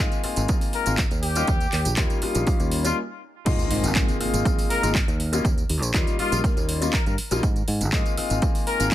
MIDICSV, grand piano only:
0, 0, Header, 1, 2, 480
1, 0, Start_track
1, 0, Key_signature, -4, "major"
1, 0, Tempo, 495868
1, 1432, Time_signature, 4, 2, 24, 8
1, 8660, End_track
2, 0, Start_track
2, 0, Title_t, "Grand piano"
2, 0, Program_c, 0, 0
2, 0, Note_on_c, 0, 56, 100
2, 0, Note_on_c, 0, 58, 88
2, 0, Note_on_c, 0, 60, 94
2, 0, Note_on_c, 0, 63, 92
2, 0, Note_on_c, 0, 65, 109
2, 188, Note_off_c, 0, 56, 0
2, 189, Note_off_c, 0, 58, 0
2, 190, Note_off_c, 0, 60, 0
2, 191, Note_off_c, 0, 63, 0
2, 191, Note_off_c, 0, 65, 0
2, 226, Note_on_c, 0, 56, 90
2, 228, Note_on_c, 0, 58, 81
2, 230, Note_on_c, 0, 60, 82
2, 232, Note_on_c, 0, 63, 79
2, 235, Note_on_c, 0, 65, 92
2, 441, Note_off_c, 0, 56, 0
2, 442, Note_off_c, 0, 58, 0
2, 444, Note_off_c, 0, 60, 0
2, 445, Note_off_c, 0, 63, 0
2, 446, Note_off_c, 0, 65, 0
2, 469, Note_on_c, 0, 56, 85
2, 470, Note_on_c, 0, 58, 77
2, 472, Note_on_c, 0, 60, 78
2, 474, Note_on_c, 0, 63, 78
2, 475, Note_on_c, 0, 65, 92
2, 805, Note_off_c, 0, 56, 0
2, 806, Note_off_c, 0, 58, 0
2, 807, Note_off_c, 0, 60, 0
2, 808, Note_off_c, 0, 63, 0
2, 808, Note_off_c, 0, 65, 0
2, 830, Note_on_c, 0, 56, 84
2, 833, Note_on_c, 0, 58, 77
2, 834, Note_on_c, 0, 60, 78
2, 837, Note_on_c, 0, 63, 82
2, 840, Note_on_c, 0, 65, 95
2, 952, Note_off_c, 0, 56, 0
2, 954, Note_off_c, 0, 58, 0
2, 954, Note_off_c, 0, 60, 0
2, 956, Note_off_c, 0, 63, 0
2, 957, Note_off_c, 0, 65, 0
2, 1312, Note_on_c, 0, 55, 94
2, 1314, Note_on_c, 0, 58, 86
2, 1317, Note_on_c, 0, 61, 90
2, 1317, Note_on_c, 0, 63, 88
2, 1320, Note_on_c, 0, 65, 106
2, 1433, Note_off_c, 0, 55, 0
2, 1434, Note_off_c, 0, 58, 0
2, 1435, Note_off_c, 0, 61, 0
2, 1436, Note_off_c, 0, 63, 0
2, 1437, Note_off_c, 0, 65, 0
2, 1906, Note_on_c, 0, 55, 95
2, 1908, Note_on_c, 0, 58, 92
2, 1909, Note_on_c, 0, 61, 90
2, 1910, Note_on_c, 0, 63, 90
2, 1913, Note_on_c, 0, 65, 109
2, 2107, Note_off_c, 0, 55, 0
2, 2109, Note_off_c, 0, 58, 0
2, 2109, Note_off_c, 0, 61, 0
2, 2110, Note_off_c, 0, 63, 0
2, 2111, Note_off_c, 0, 65, 0
2, 2148, Note_on_c, 0, 55, 90
2, 2149, Note_on_c, 0, 58, 82
2, 2151, Note_on_c, 0, 61, 80
2, 2152, Note_on_c, 0, 63, 82
2, 2155, Note_on_c, 0, 65, 98
2, 2362, Note_off_c, 0, 55, 0
2, 2363, Note_off_c, 0, 58, 0
2, 2364, Note_off_c, 0, 61, 0
2, 2365, Note_off_c, 0, 63, 0
2, 2366, Note_off_c, 0, 65, 0
2, 2385, Note_on_c, 0, 55, 85
2, 2388, Note_on_c, 0, 61, 81
2, 2389, Note_on_c, 0, 58, 78
2, 2391, Note_on_c, 0, 63, 80
2, 2393, Note_on_c, 0, 65, 93
2, 2723, Note_off_c, 0, 55, 0
2, 2725, Note_off_c, 0, 58, 0
2, 2725, Note_off_c, 0, 61, 0
2, 2726, Note_off_c, 0, 63, 0
2, 2727, Note_off_c, 0, 65, 0
2, 2750, Note_on_c, 0, 55, 90
2, 2752, Note_on_c, 0, 58, 81
2, 2753, Note_on_c, 0, 61, 84
2, 2755, Note_on_c, 0, 63, 80
2, 2759, Note_on_c, 0, 65, 95
2, 2869, Note_off_c, 0, 55, 0
2, 2870, Note_off_c, 0, 58, 0
2, 2870, Note_off_c, 0, 61, 0
2, 2871, Note_off_c, 0, 63, 0
2, 2873, Note_off_c, 0, 65, 0
2, 3341, Note_on_c, 0, 56, 98
2, 3344, Note_on_c, 0, 58, 91
2, 3344, Note_on_c, 0, 60, 94
2, 3347, Note_on_c, 0, 63, 89
2, 3349, Note_on_c, 0, 65, 110
2, 3780, Note_off_c, 0, 56, 0
2, 3782, Note_off_c, 0, 58, 0
2, 3782, Note_off_c, 0, 60, 0
2, 3784, Note_off_c, 0, 63, 0
2, 3784, Note_off_c, 0, 65, 0
2, 3823, Note_on_c, 0, 56, 98
2, 3825, Note_on_c, 0, 58, 85
2, 3827, Note_on_c, 0, 60, 92
2, 3828, Note_on_c, 0, 63, 89
2, 3831, Note_on_c, 0, 65, 107
2, 4026, Note_off_c, 0, 56, 0
2, 4027, Note_off_c, 0, 58, 0
2, 4028, Note_off_c, 0, 60, 0
2, 4029, Note_off_c, 0, 63, 0
2, 4030, Note_off_c, 0, 65, 0
2, 4063, Note_on_c, 0, 56, 87
2, 4066, Note_on_c, 0, 58, 79
2, 4068, Note_on_c, 0, 60, 77
2, 4069, Note_on_c, 0, 63, 80
2, 4071, Note_on_c, 0, 65, 102
2, 4280, Note_off_c, 0, 56, 0
2, 4281, Note_off_c, 0, 58, 0
2, 4282, Note_off_c, 0, 60, 0
2, 4283, Note_off_c, 0, 63, 0
2, 4284, Note_off_c, 0, 65, 0
2, 4303, Note_on_c, 0, 56, 86
2, 4305, Note_on_c, 0, 58, 77
2, 4308, Note_on_c, 0, 60, 82
2, 4309, Note_on_c, 0, 63, 80
2, 4311, Note_on_c, 0, 65, 96
2, 4642, Note_off_c, 0, 56, 0
2, 4643, Note_off_c, 0, 58, 0
2, 4645, Note_off_c, 0, 60, 0
2, 4645, Note_off_c, 0, 63, 0
2, 4646, Note_off_c, 0, 65, 0
2, 4671, Note_on_c, 0, 56, 87
2, 4671, Note_on_c, 0, 58, 78
2, 4674, Note_on_c, 0, 60, 83
2, 4675, Note_on_c, 0, 63, 81
2, 4677, Note_on_c, 0, 65, 94
2, 4792, Note_off_c, 0, 56, 0
2, 4792, Note_off_c, 0, 58, 0
2, 4794, Note_off_c, 0, 60, 0
2, 4795, Note_off_c, 0, 63, 0
2, 4795, Note_off_c, 0, 65, 0
2, 5153, Note_on_c, 0, 55, 100
2, 5153, Note_on_c, 0, 58, 91
2, 5156, Note_on_c, 0, 61, 90
2, 5158, Note_on_c, 0, 63, 87
2, 5160, Note_on_c, 0, 65, 106
2, 5273, Note_off_c, 0, 55, 0
2, 5273, Note_off_c, 0, 58, 0
2, 5275, Note_off_c, 0, 61, 0
2, 5276, Note_off_c, 0, 63, 0
2, 5277, Note_off_c, 0, 65, 0
2, 5746, Note_on_c, 0, 55, 98
2, 5748, Note_on_c, 0, 58, 94
2, 5751, Note_on_c, 0, 61, 90
2, 5752, Note_on_c, 0, 63, 94
2, 5753, Note_on_c, 0, 65, 114
2, 5948, Note_off_c, 0, 55, 0
2, 5949, Note_off_c, 0, 58, 0
2, 5950, Note_off_c, 0, 61, 0
2, 5950, Note_off_c, 0, 63, 0
2, 5951, Note_off_c, 0, 65, 0
2, 5989, Note_on_c, 0, 55, 90
2, 5991, Note_on_c, 0, 58, 84
2, 5993, Note_on_c, 0, 61, 82
2, 5996, Note_on_c, 0, 63, 86
2, 5998, Note_on_c, 0, 65, 98
2, 6203, Note_off_c, 0, 55, 0
2, 6204, Note_off_c, 0, 58, 0
2, 6205, Note_off_c, 0, 61, 0
2, 6206, Note_off_c, 0, 63, 0
2, 6207, Note_off_c, 0, 65, 0
2, 6228, Note_on_c, 0, 55, 90
2, 6231, Note_on_c, 0, 58, 84
2, 6233, Note_on_c, 0, 61, 78
2, 6236, Note_on_c, 0, 63, 76
2, 6237, Note_on_c, 0, 65, 93
2, 6565, Note_off_c, 0, 55, 0
2, 6567, Note_off_c, 0, 58, 0
2, 6567, Note_off_c, 0, 61, 0
2, 6569, Note_off_c, 0, 63, 0
2, 6569, Note_off_c, 0, 65, 0
2, 6592, Note_on_c, 0, 55, 91
2, 6595, Note_on_c, 0, 58, 83
2, 6597, Note_on_c, 0, 61, 82
2, 6598, Note_on_c, 0, 63, 80
2, 6601, Note_on_c, 0, 65, 96
2, 6713, Note_off_c, 0, 55, 0
2, 6714, Note_off_c, 0, 58, 0
2, 6715, Note_off_c, 0, 61, 0
2, 6716, Note_off_c, 0, 63, 0
2, 6717, Note_off_c, 0, 65, 0
2, 7076, Note_on_c, 0, 55, 96
2, 7078, Note_on_c, 0, 58, 90
2, 7079, Note_on_c, 0, 61, 85
2, 7082, Note_on_c, 0, 63, 86
2, 7084, Note_on_c, 0, 65, 104
2, 7178, Note_off_c, 0, 55, 0
2, 7179, Note_off_c, 0, 58, 0
2, 7179, Note_off_c, 0, 61, 0
2, 7181, Note_off_c, 0, 63, 0
2, 7182, Note_off_c, 0, 65, 0
2, 7669, Note_on_c, 0, 56, 100
2, 7672, Note_on_c, 0, 58, 91
2, 7674, Note_on_c, 0, 60, 88
2, 7675, Note_on_c, 0, 63, 94
2, 7678, Note_on_c, 0, 65, 110
2, 7869, Note_off_c, 0, 56, 0
2, 7871, Note_off_c, 0, 58, 0
2, 7871, Note_off_c, 0, 60, 0
2, 7872, Note_off_c, 0, 63, 0
2, 7874, Note_off_c, 0, 65, 0
2, 7909, Note_on_c, 0, 56, 86
2, 7910, Note_on_c, 0, 58, 79
2, 7913, Note_on_c, 0, 60, 79
2, 7914, Note_on_c, 0, 63, 85
2, 7916, Note_on_c, 0, 65, 96
2, 8123, Note_off_c, 0, 56, 0
2, 8123, Note_off_c, 0, 58, 0
2, 8125, Note_off_c, 0, 60, 0
2, 8125, Note_off_c, 0, 63, 0
2, 8126, Note_off_c, 0, 65, 0
2, 8150, Note_on_c, 0, 58, 83
2, 8486, Note_off_c, 0, 58, 0
2, 8511, Note_on_c, 0, 56, 91
2, 8513, Note_on_c, 0, 58, 81
2, 8515, Note_on_c, 0, 60, 83
2, 8518, Note_on_c, 0, 63, 79
2, 8519, Note_on_c, 0, 65, 98
2, 8632, Note_off_c, 0, 56, 0
2, 8633, Note_off_c, 0, 58, 0
2, 8634, Note_off_c, 0, 60, 0
2, 8636, Note_off_c, 0, 63, 0
2, 8637, Note_off_c, 0, 65, 0
2, 8660, End_track
0, 0, End_of_file